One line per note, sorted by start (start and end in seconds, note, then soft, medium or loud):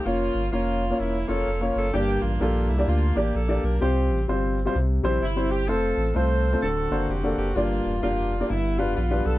0.05 0.30 F1 loud
0.05 0.51 A#3 medium
0.05 0.41 A#3 medium
0.05 0.51 C#4 medium
0.05 0.41 C#4 medium
0.05 0.51 F4 medium
0.05 0.41 F4 medium
0.05 0.42 C#5 medium
0.35 0.50 G1 medium
0.52 0.93 F1 loud
0.52 0.99 A#3 medium
0.52 0.82 A#3 medium
0.52 0.99 C#4 medium
0.52 0.82 C#4 medium
0.52 0.96 F4 medium
0.52 0.82 F4 medium
0.52 0.82 C#5 medium
0.90 1.15 A#3 medium
0.90 1.15 C#4 medium
0.90 1.15 F4 medium
0.90 1.15 C#5 medium
0.99 1.24 E1 loud
0.99 1.90 A#3 medium
0.99 1.27 C#4 medium
0.99 1.28 E4 medium
1.27 1.44 F1 medium
1.27 1.47 A#3 medium
1.27 1.89 C#4 medium
1.27 1.47 C#4 medium
1.27 1.89 F4 medium
1.27 1.48 F4 medium
1.27 1.61 A4 medium
1.27 1.48 C#5 medium
1.47 1.71 F1 medium
1.61 1.85 A#3 medium
1.61 1.85 C#4 medium
1.61 1.85 F4 medium
1.61 1.85 C#5 medium
1.75 1.91 F#1 medium
1.75 1.92 A4 medium
1.93 2.18 G1 loud
1.93 2.65 G2 medium
1.93 2.29 A#3 medium
1.93 2.84 A#3 medium
1.93 2.29 D4 medium
1.93 2.84 D4 medium
1.93 2.22 G4 medium
1.93 2.29 G4 medium
1.93 2.30 D5 medium
2.22 2.38 A1 medium
2.22 2.40 F4 medium
2.40 2.71 A#1 loud
2.40 2.69 A#3 medium
2.40 2.70 D4 medium
2.40 2.67 F4 medium
2.40 2.70 G4 medium
2.40 2.70 A4 medium
2.69 2.85 C2 medium
2.69 2.88 E4 medium
2.78 3.02 A#3 medium
2.78 3.02 D4 medium
2.78 3.03 G4 medium
2.78 3.03 D5 medium
2.88 3.12 D2 loud
2.88 3.78 A#3 medium
2.88 3.78 D4 medium
2.88 3.16 F4 medium
3.15 3.32 A1 medium
3.15 3.35 A#3 medium
3.15 3.35 D4 medium
3.15 3.35 G4 medium
3.15 3.36 D5 medium
3.35 3.59 A#1 medium
3.35 3.63 A4 medium
3.48 3.72 A#3 medium
3.48 3.73 D4 medium
3.48 3.73 G4 medium
3.48 3.73 D5 medium
3.64 3.79 B1 medium
3.64 3.82 A#4 medium
3.81 4.11 C2 medium
3.81 4.53 C3 medium
3.81 4.16 G3 medium
3.81 4.17 C4 medium
3.81 4.71 C4 medium
3.81 4.17 F4 medium
3.81 4.25 G4 medium
3.81 4.17 C5 medium
4.10 4.26 A1 medium
4.28 4.68 G1 medium
4.28 4.57 G3 medium
4.28 4.58 C4 medium
4.28 4.58 F4 medium
4.28 4.58 C5 medium
4.65 4.75 G3 medium
4.65 4.75 C4 medium
4.65 4.75 F4 medium
4.65 4.76 C5 medium
4.75 5.00 C2 loud
4.75 5.47 C3 medium
5.03 5.19 A#1 medium
5.03 5.23 G3 medium
5.03 5.23 C4 medium
5.03 5.23 E4 medium
5.03 5.23 C5 medium
5.22 5.70 G1 medium
5.22 5.49 E4 medium
5.36 5.60 G3 medium
5.36 5.60 C4 medium
5.36 5.61 E4 medium
5.36 5.61 C5 medium
5.51 5.69 G4 medium
5.68 5.93 F1 loud
5.68 6.04 A3 medium
5.68 6.04 C4 medium
5.68 6.58 C4 medium
5.68 6.15 F4 medium
5.68 6.04 F4 medium
5.68 6.15 A4 loud
5.68 6.04 C5 medium
5.97 6.13 A1 medium
6.15 6.55 C2 medium
6.15 6.44 A3 medium
6.15 6.45 C4 medium
6.15 6.45 F4 medium
6.15 6.59 F4 medium
6.15 6.59 A4 medium
6.15 6.63 C5 loud
6.15 6.45 C5 medium
6.53 6.62 A3 medium
6.53 6.62 C4 medium
6.53 6.63 F4 medium
6.53 6.63 C5 medium
6.63 6.87 D1 loud
6.63 7.34 D3 medium
6.63 7.53 C4 medium
6.63 7.53 F#4 medium
6.63 7.06 A4 medium
6.91 7.07 F#1 medium
6.91 7.10 A#3 medium
6.91 7.10 D4 medium
6.91 7.11 F#4 medium
6.91 7.11 C5 medium
7.09 7.34 F1 medium
7.09 7.36 G4 medium
7.23 7.47 A#3 medium
7.23 7.48 D4 medium
7.23 7.48 F#4 medium
7.23 7.48 A4 medium
7.38 7.53 F#1 medium
7.38 7.55 G4 medium
7.56 7.80 G1 loud
7.56 8.28 G2 medium
7.56 7.91 A#3 medium
7.56 8.02 A#3 medium
7.56 7.92 D4 medium
7.56 8.02 D4 medium
7.56 8.02 F4 medium
7.56 7.92 G4 medium
7.56 7.92 D5 medium
7.85 8.01 E1 medium
8.02 8.43 F1 medium
8.02 8.32 A#3 medium
8.02 8.47 A#3 medium
8.02 8.32 D4 medium
8.02 8.47 D4 medium
8.02 8.47 F4 medium
8.02 8.32 G4 medium
8.02 8.32 D5 medium
8.40 8.50 A#3 medium
8.40 8.50 D4 medium
8.40 8.50 G4 medium
8.40 8.50 D5 medium
8.50 8.80 G1 loud
8.50 9.21 G2 medium
8.50 9.38 B3 medium
8.50 8.78 E4 medium
8.78 8.94 F1 medium
8.78 8.97 G3 medium
8.78 8.98 D4 medium
8.78 8.95 F4 medium
8.78 8.98 F4 medium
8.78 8.98 B4 medium
8.97 9.21 A#1 medium
8.97 9.23 F4 medium
9.10 9.35 G3 medium
9.10 9.35 D4 medium
9.10 9.35 F4 medium
9.10 9.35 B4 medium
9.25 9.38 B1 medium
9.25 9.38 A4 medium